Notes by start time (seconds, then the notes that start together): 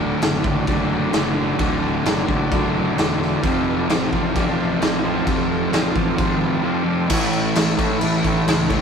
Already playing: D1 D2 A2 D3 F#4 A4 D5
0.20 F#1 D2 A2 D3 F#4 D5, snare, crash
0.24 A4
0.42 F#1 A2 D3 F#4, kick
0.47 A4 D5
0.66 F#1 D2 A2 D3 F#4 A4 D5, kick, crash
0.92 F#4 A4 D5
1.12 F#1 D2 A2 D3 F#4 A4 D5, snare, crash
1.34 A2 D3 F#4 A4 D5
1.57 D1 D2 A2 D3 F#4 A4 D5, kick, crash
1.81 F#4 A4 D5
2.03 F#1 D2 A2 D3 F#4 A4 D5, snare, crash
2.26 F#1 A2 D3 F#4 A4 D5, kick
2.49 F#1 D2 A2 F#4 A4 D5, kick, crash
2.54 D3
2.76 F#4 A4 D5
2.96 E1 D2 A2 D3 F#4 A4 D5, snare, crash
3.19 A2 D3 F#4 A4 D5, snare
3.41 F1 F2 C3 F4 A4 C5, kick, crash
3.46 F3
3.64 F4 A4 B4
3.88 A1 F2 C3 F3 F4 A4 C5, snare, crash
4.11 A1 C3 F3 F4 A4 C5, kick
4.35 A1 F2 C3 F3 F4 A4 D5, kick, crash
4.56 F4 A4 C5
4.79 A1 F2 C3 F4 A4 C5, snare, crash
4.83 F3
5.03 C3 F3 F4 A4 C5
5.26 F1 F2 C3 F3 F4 A4 C5, kick, crash
5.48 F4 A4 C5
5.71 A1 F2 C3 F3 F4 A4 C5, snare, crash
5.93 A1 C3 F3 F4 A4 C5, kick
6.16 G#1 F2 C3 F3 F4 A4 C5, kick, crash
6.40 F4 A4 B4
6.62 F2 C3 F3 F4 A4 C5
6.84 C3 F3 F4 A4 C5
7.08 A1 A2 E3 A3 E4 A4 C#5, kick, crash
7.30 E4 A4 C#5, crash
7.52 A2 E3 E4 A4 C#5, crash
7.56 A1 A3, snare
7.77 E3 A3 E4 A4 C#5, kick, crash
7.98 A2 E3 E4 A4 B4, crash
8.02 A1 A3
8.24 E3 A3 E4 A4 C#5, kick, crash
8.44 C#2 E4 A4 C#5, crash
8.49 snare
8.68 A3 E4 A4 C#5, kick, crash
8.73 E3